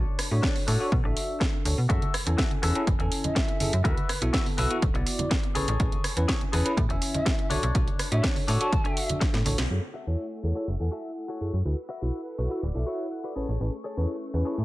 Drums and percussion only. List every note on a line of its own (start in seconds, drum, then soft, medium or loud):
0.19 cross-stick medium
0.19 open hi-hat loud
0.43 kick loud
0.43 snare loud
0.56 open hi-hat medium
0.68 open hi-hat loud
0.92 kick loud
1.17 open hi-hat loud
1.41 kick loud
1.41 snare loud
1.65 open hi-hat loud
1.90 kick loud
1.90 closed hi-hat soft
2.02 closed hi-hat soft
2.02 tambourine soft
2.02 high conga medium
2.14 cross-stick medium
2.14 open hi-hat loud
2.14 tambourine medium
2.27 closed hi-hat soft
2.27 tambourine soft
2.38 kick loud
2.38 snare loud
2.38 closed hi-hat soft
2.51 closed hi-hat soft
2.51 tambourine soft
2.51 high conga medium
2.63 cross-stick medium
2.63 open hi-hat loud
2.63 tambourine medium
2.75 closed hi-hat soft
2.75 tambourine soft
2.87 kick loud
2.87 closed hi-hat soft
2.87 tambourine soft
2.87 high conga medium
2.87 low conga medium
2.99 closed hi-hat soft
2.99 tambourine soft
3.12 open hi-hat loud
3.12 tambourine medium
3.24 closed hi-hat soft
3.24 tambourine soft
3.24 high conga medium
3.24 low conga medium
3.35 kick loud
3.35 snare loud
3.35 closed hi-hat soft
3.35 tambourine soft
3.49 closed hi-hat soft
3.60 open hi-hat loud
3.60 tambourine medium
3.60 high conga medium
3.73 closed hi-hat soft
3.73 tambourine soft
3.85 kick loud
3.85 closed hi-hat soft
3.97 closed hi-hat soft
3.97 tambourine soft
3.97 high conga medium
4.09 cross-stick medium
4.09 open hi-hat loud
4.09 tambourine medium
4.22 closed hi-hat soft
4.34 kick medium
4.34 snare loud
4.34 closed hi-hat soft
4.46 open hi-hat medium
4.46 tambourine soft
4.46 high conga medium
4.58 open hi-hat medium
4.58 tambourine medium
4.71 closed hi-hat medium
4.71 tambourine soft
4.82 kick loud
4.82 closed hi-hat medium
4.82 tambourine soft
4.82 high conga medium
4.82 low conga medium
4.95 closed hi-hat soft
4.95 tambourine soft
5.06 open hi-hat loud
5.06 tambourine medium
5.19 closed hi-hat soft
5.19 tambourine soft
5.19 high conga medium
5.19 low conga medium
5.31 kick loud
5.31 snare loud
5.31 closed hi-hat medium
5.43 closed hi-hat soft
5.43 tambourine soft
5.55 open hi-hat loud
5.55 tambourine medium
5.55 high conga medium
5.67 closed hi-hat soft
5.67 tambourine soft
5.80 kick loud
5.80 closed hi-hat medium
5.80 tambourine medium
5.92 closed hi-hat soft
5.92 tambourine soft
5.92 high conga medium
6.04 cross-stick medium
6.04 open hi-hat medium
6.04 tambourine medium
6.17 closed hi-hat soft
6.17 tambourine soft
6.29 kick medium
6.29 snare loud
6.29 closed hi-hat medium
6.41 closed hi-hat soft
6.41 tambourine soft
6.41 high conga medium
6.53 cross-stick medium
6.53 open hi-hat loud
6.53 tambourine medium
6.66 closed hi-hat medium
6.66 tambourine soft
6.77 kick loud
6.77 closed hi-hat medium
6.77 tambourine soft
6.77 high conga medium
6.77 low conga medium
6.90 closed hi-hat soft
6.90 tambourine soft
7.02 open hi-hat medium
7.02 tambourine medium
7.14 closed hi-hat soft
7.14 tambourine soft
7.14 high conga medium
7.14 low conga medium
7.26 kick loud
7.26 snare loud
7.26 closed hi-hat medium
7.39 closed hi-hat soft
7.39 tambourine soft
7.50 open hi-hat loud
7.50 tambourine loud
7.50 high conga medium
7.63 closed hi-hat soft
7.63 tambourine soft
7.75 kick loud
7.75 closed hi-hat medium
7.75 tambourine medium
7.87 closed hi-hat soft
7.87 tambourine soft
7.87 high conga medium
7.99 cross-stick medium
7.99 open hi-hat loud
7.99 tambourine medium
8.12 closed hi-hat medium
8.12 tambourine soft
8.24 kick medium
8.24 snare loud
8.24 closed hi-hat medium
8.36 open hi-hat medium
8.36 tambourine soft
8.36 high conga medium
8.48 open hi-hat loud
8.48 tambourine medium
8.61 closed hi-hat medium
8.73 kick loud
8.73 closed hi-hat medium
8.73 tambourine medium
8.73 high conga medium
8.73 low conga medium
8.85 closed hi-hat soft
8.85 tambourine soft
8.97 open hi-hat loud
8.97 tambourine loud
9.09 closed hi-hat medium
9.09 tambourine soft
9.09 high conga medium
9.09 low conga medium
9.21 kick loud
9.21 snare medium
9.21 closed hi-hat medium
9.21 tambourine medium
9.33 snare medium
9.33 closed hi-hat soft
9.33 tambourine soft
9.45 open hi-hat loud
9.45 tambourine loud
9.45 high conga medium
9.58 snare medium
9.58 closed hi-hat medium
9.58 tambourine soft